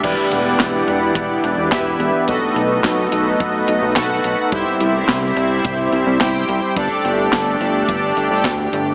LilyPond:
<<
  \new Staff \with { instrumentName = "Analog polysynth" } { \time 4/4 \key e \minor \tempo 4 = 107 <e' g' b' d''>2. <e' g' b' e''>4 | <fis' a' b' dis''>2. <fis' a' b' fis''>4 | <e' g' c'' e''>2. <e' g' c'' g''>4 | <d' g' a' d''>2~ <d' g' a' d''>8. <d' g' a' d''>16 r4 | }
  \new Staff \with { instrumentName = "Analog synth pad" } { \time 4/4 \key e \minor << { <e d' g' fis''>1 | <a dis'>1 | <g c' e'>1 | <a d' g'>1 | } \\ { b1~ | b1 | r1 | r1 | } >> }
  \new Staff \with { instrumentName = "Analog synth bass" } { \clef bass \time 4/4 \key e \minor e,,16 r16 e,,8 e,,8 e,,8 e,,8 e,,16 e,,16 e,,8 e,,16 r16 | b,,16 r16 b,,8 b,,8 b,,8 b,,8 b,,16 b,,16 b,,8 b,,16 r16 | c,16 r16 c,8 c,8 c,8 c,8 c,16 c,16 c,8 c,16 r16 | g,,16 r16 g,,8 g,,8 g,,8 g,,8 g,,16 g,,16 d,8 g,,8 | }
  \new DrumStaff \with { instrumentName = "Drums" } \drummode { \time 4/4 <cymc hh bd>8 hh8 <hc hh bd sn>8 hh8 <hh bd>8 hh8 <hc hh bd sn>8 hh8 | <hh bd>8 hh8 <hc hh bd sn>8 hh8 <hh bd>8 hh8 <hc hh bd sn>8 hh8 | <hh bd>8 hh8 <hc hh bd sn>8 hh8 <hh bd>8 hh8 <hc hh bd sn>8 hh8 | <hh bd>8 hh8 <hc hh bd sn>8 hh8 <hh bd>8 hh8 <hc hh bd sn>8 hh8 | }
>>